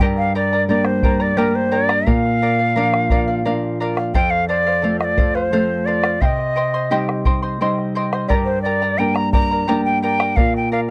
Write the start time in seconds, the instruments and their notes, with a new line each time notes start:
0.00 nylon-string guitar G2, charango G4 A#4 D5 G5 A#5
0.16 quena F5, bombo rim
0.35 charango A#4 D5 G5 A#5, quena D5
0.53 charango A#4 D5 A#5
0.68 nylon-string guitar G3 A#3 D4, charango A#4 D5 G5 A#5, quena D5
0.85 quena C5, bombo rim
1.03 charango A#4 D5 G5 A#5, bombo rim, bombo low
1.20 charango A#4 D5 A#5, quena D5
1.37 nylon-string guitar G3 A#3 D4, charango G4 A#4 D5 G5 A#5, quena A#4
1.55 quena C5
1.71 charango A#4 D5 G5 A#5, quena D5
1.89 charango A#4 D5 A#5, bombo rim
2.06 nylon-string guitar A#2, charango A#4 D5 F5, quena F5, bombo low
2.25 bombo rim
2.42 charango A#4 D5 F5
2.59 charango D5 F5
2.76 nylon-string guitar F3 A#3 D4, charango A#4 D5 F5
2.94 bombo rim
3.10 charango A#4 D5 F5, bombo rim, bombo low
3.28 charango D5 F5
3.45 nylon-string guitar F3 A#3 D4, charango A#4 D5 F5
3.80 charango A#4 D5 F5
3.97 charango D5 F5, bombo rim
4.14 nylon-string guitar F2, charango A4 C5 F5, quena G5, bombo low
4.30 quena F5, bombo rim
4.48 charango A4 C5 F5, quena D5
4.67 charango C5 F5
4.82 nylon-string guitar F3 A3 C4, charango A4 C5 F5
4.99 quena D#5, bombo rim
5.04 quena D5
5.17 charango A4 C5 F5, bombo low
5.35 quena C5, charango C5 F5
5.52 nylon-string guitar F3 A3 C4, charango A4 C5 F5
5.86 charango A4 C5 F5, quena D5
6.04 charango C5 F5, bombo rim
6.21 nylon-string guitar C3, charango C5 D#5 G5 C6, quena F5, bombo low
6.25 quena D#5
6.39 bombo rim
6.56 charango C5 D#5 G5 C6
6.74 charango C5 D#5 C6
6.90 nylon-string guitar G3 C4 D#4, charango G4 C5 D#5 G5 C6
7.09 bombo rim
7.25 charango C5 D#5 G5 C6, bombo low
7.43 charango C5 D#5 C6
7.61 nylon-string guitar G3 C4 D#4, charango C5 D#5 G5 C6
7.78 bombo rim
7.95 charango C5 D#5 G5 C6
8.13 charango C5 D#5 C6, bombo rim
8.28 nylon-string guitar G2, charango G4 A#4 D5 G5 A#5, quena D5, bombo low
8.45 quena C5, bombo rim
8.62 charango A#4 D5 G5 A#5, quena D5
8.82 charango A#4 D5 A#5
8.98 nylon-string guitar G3 A#3 D4, charango A#4 D5 G5 A#5, quena G5
9.15 quena A#5, bombo rim
9.32 charango A#4 D5 G5 A#5, quena A#5, bombo rim, bombo low
9.51 charango A#4 D5 A#5
9.68 nylon-string guitar G3 A#3 D4, charango G4 A#4 D5 G5 A#5
9.85 quena G5
10.03 charango A#4 D5 G5 A#5, quena G5
10.20 charango A#4 D5 A#5, bombo rim
10.36 nylon-string guitar A#2, charango A#4 D5 F5, quena F5, bombo low
10.54 quena G5, bombo rim
10.72 charango A#4 D5 F5, quena F5